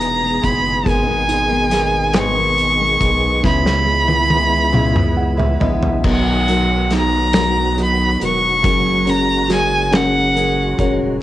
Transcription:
Already playing: sub bass E1, felt piano B2 B3 G#4 B4, tonewheel organ B2 E3 G#3 B3 G#4, steel-string acoustic guitar B3 D#4 G#4, violin A#5
0.01 closed hi-hat
0.21 steel-string acoustic guitar B3 D#4 G#4
0.41 sub bass F#1, steel-string acoustic guitar G#3 B3 D#4 G#4, violin B5, kick, closed hi-hat
0.83 sub bass G#1, steel-string acoustic guitar G#2 D#3 G#3 B3 D#4 A#4, tonewheel organ B2 D#3 B3, felt piano G#3, kick, closed hi-hat
0.88 violin G#5
1.05 steel-string acoustic guitar G#3 B3 D#4 A#4
1.28 felt piano D#4, closed hi-hat
1.48 steel-string acoustic guitar G#3 B3 D#4 A#4
1.69 steel-string acoustic guitar G#3 B3 D#4 A#4, felt piano G#4, snare, closed hi-hat
2.13 steel-string acoustic guitar G#2 D#3 G#3 B3 D#4 A#4, felt piano B4, snare, closed hi-hat
2.17 violin C#6
2.35 steel-string acoustic guitar G#3 B3 D#4 A#4
2.58 closed hi-hat
2.78 steel-string acoustic guitar G#3 B3 D#4 A#4
2.99 sub bass B1, steel-string acoustic guitar G#3 B3 D#4 A#4, kick, closed hi-hat
3.43 sub bass C#2, felt piano C#3, tonewheel organ C#3 E3 B3 E4, steel-string acoustic guitar C#3 G#3 B3 E4 B4, violin B5, kick, snare
3.64 steel-string acoustic guitar B3 E4 B4, snare
3.86 felt piano G#3
4.08 steel-string acoustic guitar B3 E4 B4, high tom
4.30 steel-string acoustic guitar G#3 B3 E4 B4, felt piano E4, high tom
4.72 steel-string acoustic guitar C#3 G#3 B3 E4 B4, felt piano G#4, mid tom
4.93 steel-string acoustic guitar B3 E4 B4, mid tom
5.17 felt piano F#5
5.37 steel-string acoustic guitar B3 E4 B4, felt piano E5, floor tom
5.60 sub bass A#1, steel-string acoustic guitar G#3 B3 E4 B4, felt piano D#5, floor tom
5.83 floor tom
6.03 sub bass B1, felt piano B2, steel-string acoustic guitar B2 D#3 F#3 B3 D#4 A#4, tonewheel organ D#3 F#3 B3 F#4, kick, crash
6.10 violin F#5
6.47 felt piano F#3, steel-string acoustic guitar F#3 B3 D#4 A#4, closed hi-hat
6.90 steel-string acoustic guitar F#3 B3 D#4 A#4, felt piano D#4, snare, closed hi-hat
6.97 violin A#5
7.33 steel-string acoustic guitar B2 D#3 F#3 B3 D#4 A#4, felt piano F#3, snare, closed hi-hat
7.76 steel-string acoustic guitar F#3 B3 D#4, felt piano F#4, closed hi-hat
7.83 violin B5
8.19 sub bass E1, steel-string acoustic guitar F#3 B3 D#4 A#4, felt piano A#4, closed hi-hat
8.25 violin C#6
8.62 sub bass F#1, tonewheel organ C#3 G#3, steel-string acoustic guitar F#3 C#4 G#4 A#4, felt piano F#3, kick, closed hi-hat
9.05 felt piano C#4, steel-string acoustic guitar C#4 G#4 A#4, closed hi-hat
9.09 violin A#5
9.48 steel-string acoustic guitar F#3 C#4 G#4 A#4, felt piano F#4, snare, closed hi-hat
9.53 violin G#5
9.92 steel-string acoustic guitar F#3 C#4 G#4 A#4, felt piano C#4, violin F#5, snare, closed hi-hat
10.35 steel-string acoustic guitar F#3 C#4 G#4 A#4, felt piano A#4, closed hi-hat
10.78 sub bass D#1, steel-string acoustic guitar C#4 G#4 A#4, felt piano C#5, kick, closed hi-hat

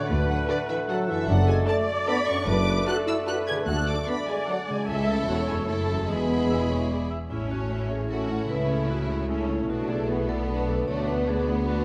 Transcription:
Already playing: french horn section D3, harp D3 D4 C#5, violin section D5
0.01 harp F#4
0.05 tuba D2, double bass section D2, harp A4, viola section B4, cor anglais F#5
0.10 cello section D2, bassoon A3
0.28 french horn section F#3, violin section F#5
0.48 french horn section D3, violin section F#4 A4 D5
0.69 french horn section E3, violin section E5
0.89 french horn section F#3, violin section F#4 A4 F#5, viola section A4
1.08 harp F#2, french horn section E3, violin section E5
1.15 harp D4
1.20 harp F#4
1.24 harp A4
1.28 double bass section F#1, tuba F#1, cello section F#2, french horn section F#3, cor anglais D5, violin section F#5
1.48 french horn section G#3, violin section G#5
1.67 french horn section A3, violin section D4 A4 A5, viola section D5
2.08 french horn section B3, violin section D4 A4 B5
2.27 harp F#2, french horn section C#4, violin section C#6
2.34 harp D4
2.39 harp F#4
2.43 harp A4
2.47 double bass section F#1, tuba F#1, cello section F#2, bassoon A3, french horn section D4, viola section B4, violin section D6
2.87 violin section D4 A4 F#6, french horn section F#4, viola section A4
3.06 french horn section E4, violin section E6
3.27 violin section D4 A4 F#6, french horn section F#4, viola section B4
3.47 harp D3, french horn section G#4, violin section G#6
3.54 harp A3
3.59 harp F#4
3.63 cello section D2, double bass section D2, harp A4, viola section A4, violin section F#6
3.67 tuba D2, french horn section F#4, cor anglais D5
3.87 french horn section D4, violin section D6
4.07 french horn section B3, violin section D4 A4 B5, viola section D5
4.27 french horn section G#3, violin section G#5
4.47 french horn section F#3, violin section D4 A4 F#5
4.67 harp C#3, french horn section G#3, violin section G#5
4.74 harp A3
4.78 harp E4
4.83 harp A4
4.87 cello section C#2, double bass section C#2, tuba C#2, bassoon A3, violin section E4 A4, cor anglais E5, viola section E5
5.07 french horn section A3, violin section A5
5.27 tuba E1, double bass section E1, cello section E2, french horn section F#3, viola section C#5, violin section F#5
5.47 harp F#2, french horn section G#3, violin section G#5
5.54 harp A3
5.58 harp E4
5.63 french horn section A3, harp C#5
5.67 tuba F#1, double bass section F#1, cello section F#2, violin section E4 A4 A5, viola section A4
5.91 harp E2
5.95 harp G#3
6.00 harp E4
6.04 double bass section E1, tuba E1, cello section E2, bassoon G#3, violin section E4 G#4 B5, harp E5
6.08 french horn section B3, viola section G#4
6.50 cor anglais E5
6.70 cor anglais C#5
6.91 cor anglais D5
7.10 cor anglais E5
7.29 double bass section A1, cello section A2, harp A2, french horn section C#4 E4, viola section C#4 E4, violin section C#4 E5, vibraphone E4
7.50 viola section A3 C#4, harp A3, vibraphone F#4, violin section C#5
7.70 viola section C#4 E4, harp E4, violin section E5
7.90 viola section A3 C#4, vibraphone G#4, violin section C#5, harp C#5
8.10 viola section C#4 E4, violin section F#4 E5, harp A4, vibraphone A4
8.30 viola section A3 C#4, violin section C#5, harp C#5
8.49 double bass section C#2, harp C#3, cello section C#3, french horn section A3, viola section C#4 E4, violin section E4 E5, vibraphone B4
8.69 viola section A3 C#4, harp A3, vibraphone A4, violin section C#5
8.89 viola section C#4 E4, harp E4, vibraphone F#4, violin section E5
9.09 viola section A3 C#4, violin section C#5, harp C#5
9.29 viola section C#4 E4, violin section C#4 E5, vibraphone E4, harp A4
9.38 vibraphone D4
9.45 vibraphone E4
9.49 viola section A3 C#4, harp C#5, violin section C#5
9.68 double bass section B1, cello section B2, harp B2, viola section B3 F#4, violin section D4 B4, vibraphone F#4
9.89 harp A3, viola section A3 A4, vibraphone G#4, violin section D5
10.09 violin section B3 B4, viola section B3 F#4, harp F#4
10.28 viola section A3 A4, vibraphone A4, violin section D5, harp D5
10.48 viola section B3 F#4, french horn section D4, harp A4, violin section B4, vibraphone B4
10.68 viola section A3 A4, violin section D5, harp D5
10.88 double bass section D2, cello section D2, harp D3, violin section A3 D5, french horn section B3, viola section D4 F#4, vibraphone C#5
11.07 harp B3, viola section B3 D4, vibraphone B4, violin section F#5
11.28 violin section B3 D5, viola section D4 F#4, harp F#4, vibraphone G#4
11.47 viola section B3 D4, harp B4, violin section F#5
11.67 viola section D4 F#4, harp F#4, vibraphone F#4, violin section D5

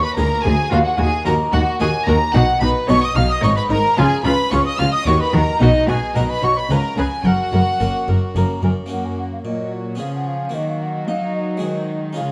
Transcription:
Already playing: harpsichord D#2
0.03 violin section B4 B5, flute B5
0.16 cello section D2, double bass section D2, harpsichord D2 A#3 F4 G#4, viola section G#4, violin section A#4 A#5, flute A#5
0.43 harpsichord D2, double bass section D2, cello section D2, violin section G#4 G#5, viola section G#4, flute G#5
0.70 harpsichord D#2, cello section D#2, double bass section D#2, violin section F4 F5, viola section F#4, flute F5
0.83 violin section F#4 F#5, flute F#5
0.98 cello section D#2, harpsichord D#2, double bass section D#2, viola section F#4, violin section G#4 G#5, flute G#5
1.25 cello section D#2, double bass section D#2, harpsichord D#2 A#3 D#4 F#4, viola section F#4, violin section A#4 A#5, flute A#5
1.53 cello section D#2, double bass section D#2, harpsichord D#2, violin section F#4 F#5, viola section F#4, flute F#5
1.80 harpsichord D#2 A#3 D#4 F#4, cello section D#2, double bass section D#2, viola section F#4, violin section G#4 G#5, flute G#5
2.06 harpsichord D#2, double bass section D#2, cello section D#2, viola section F#4, violin section A#4 A#5, flute A#5
2.33 double bass section B1, cello section B2, harpsichord B2, viola section D#4, violin section F#4 F#5, flute F#5
2.60 double bass section B1, harpsichord B2, cello section B2, viola section D#4, violin section B4 B5, flute B5
2.88 double bass section B1, cello section B2, harpsichord B2 B3 D#4 F#4, viola section D#4, violin section C#5 C#6, flute C#6
3.02 violin section D#5 D#6, flute D#6
3.15 double bass section B1, cello section B2, harpsichord B2, viola section D#4, flute F5, violin section F5 F6
3.29 violin section D#5 D#6, flute D#6
3.42 double bass section G#1, cello section G#2, harpsichord G#2 B3 D#4 G#4, viola section D#4, violin section C#5 C#6, flute C#6
3.56 violin section B4 B5, flute B5
3.70 double bass section G#1, cello section G#2, harpsichord G#2, viola section D#4, violin section A#4 A#5, flute A#5
3.97 double bass section C#2, cello section C#3, harpsichord C#3, viola section F4, violin section G#4 G#5, flute G#5
4.24 double bass section C#2, cello section C#3, harpsichord C#3, viola section F4, violin section B4 B5, flute B5
4.51 double bass section C#2, cello section C#3, harpsichord C#3 C#4 F4 G#4, viola section F4, violin section C#5 C#6, flute C#6
4.65 violin section D#5 D#6, flute D#6
4.78 double bass section C#2, cello section C#3, harpsichord C#3, viola section F4, violin section F5 F6, flute F5
4.91 violin section D#5 D#6, flute D#6
5.05 double bass section D#2, cello section D#3, harpsichord D#3 A#3 D#4 F#4, viola section F#4, violin section C#5 C#6, flute C#6
5.20 violin section B4 B5, flute B5
5.33 double bass section D#2, cello section D#3, harpsichord D#3, viola section F#4, violin section A#4 A#5, flute A#5
5.60 double bass section B1, cello section B2, harpsichord B2, violin section D#4 D#5, viola section F#4, flute D#5
5.86 double bass section B1, cello section B2, harpsichord B2, viola section F#4, violin section G#4 G#5, flute G#5
6.15 double bass section B1, cello section B2, harpsichord B2 B3 D#4 F#4, viola section F#4, violin section A#4 A#5, flute A#5
6.28 violin section B4 B5, flute B5
6.42 double bass section B1, cello section B2, harpsichord B2, viola section F#4, violin section C#5 C#6, flute C#6
6.56 violin section B4 B5, flute B5
6.69 double bass section C#2, cello section C#3, harpsichord C#3 B3 C#4 F4, violin section A#4 A#5, viola section B4, flute A#5
6.96 double bass section C#2, cello section C#3, harpsichord C#3, violin section G#4 G#5, viola section B4, flute G#5
7.24 double bass section F#1, cello section F#2, harpsichord F#2, violin section F#4 F#5, viola section A#4, flute F#5
7.52 double bass section F#1, cello section F#2, harpsichord F#2, viola section A#4
7.80 double bass section F#1, cello section F#2, harpsichord F#2 A#3 C#4 F#4, viola section A#4
8.08 double bass section F#1, cello section F#2, harpsichord F#2, viola section A#4
8.35 double bass section F#1, cello section F#2, harpsichord F#2 A#3 C#4 F#4, viola section A#4, flute A#5
8.62 double bass section F#1, cello section F#2, harpsichord F#2, viola section A#4, flute G#5
8.86 harpsichord A#3 C#4 F#4
8.90 cello section F#2, harpsichord F#2, viola section A#3, violin section F#4 A#4, flute F#5
9.04 flute G#5
9.18 flute F#5
9.32 flute F5
9.45 cello section A#2, harpsichord A#2, viola section F#3, violin section F#4 C#5, flute D#5
9.73 flute C#5
9.95 harpsichord B3 C#4 G#4
9.99 cello section C#3, harpsichord C#3, viola section F3, violin section G#4 C#5, flute F5
10.14 flute F#5
10.26 flute F5
10.50 harpsichord A#3 F#4, violin section F#4, flute D#5
10.54 cello section D#3, harpsichord D#3, viola section F#3, violin section A#4
10.68 flute F5
10.81 flute F#5
11.07 harpsichord D#4, cello section D#4, flute F5
11.35 flute D#5
11.49 flute C#5
11.57 harpsichord G#3 F#4 G#4
11.62 harpsichord D#3, cello section D#3, violin section D#4 G#4, flute C5
12.13 cello section C#3, harpsichord C#4 F4 G#4, flute F5
12.17 harpsichord C#3, viola section G#3, violin section F4 G#4

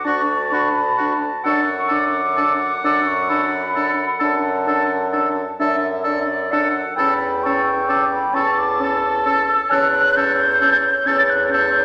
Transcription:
0.04 bassoon D2, french horn D4, oboe F#4, clarinet A5, flute C#6
0.52 french horn D4, oboe F#4, flute B5
0.98 french horn D4, oboe F#4
1.44 bassoon F#2, french horn D4, oboe A4, clarinet F#5, flute C#6
1.88 french horn D4, oboe A4, flute D6
2.37 french horn D4, oboe A4
2.83 bassoon F#2, french horn D4, oboe A4, flute D6
3.07 flute C#6
3.29 french horn D4, oboe A4, flute B5
3.76 french horn D4, oboe A4
4.20 bassoon F#2, french horn D4, oboe A4, flute A5
4.67 french horn D4, oboe A4
5.13 french horn D4, oboe A4, flute A5
5.59 bassoon F#2, french horn D4, oboe A4, clarinet E5
6.04 french horn D4, oboe A4, clarinet D5
6.51 french horn D4, oboe A4, clarinet F#5
6.96 bassoon E2, french horn C#4, oboe A4, clarinet G5, flute B5
7.43 french horn C#4, oboe A4, flute C#6
7.89 french horn C#4, oboe A4, flute D6
8.13 flute B5
8.33 bassoon E2, french horn C#4, oboe A4, clarinet A5, flute C#6
8.59 flute D6
8.80 french horn C#4, oboe A4, flute E6
9.26 french horn C#4, oboe A4
9.71 bassoon E2, french horn C#4, oboe A4, clarinet C#5, flute F#6
10.16 french horn C#4, oboe A4, flute G6
10.61 french horn C#4, oboe A4
11.06 bassoon E2, french horn C#4, oboe A4, flute A6
11.30 flute F#6
11.49 french horn C#4, flute G6
11.53 oboe A4

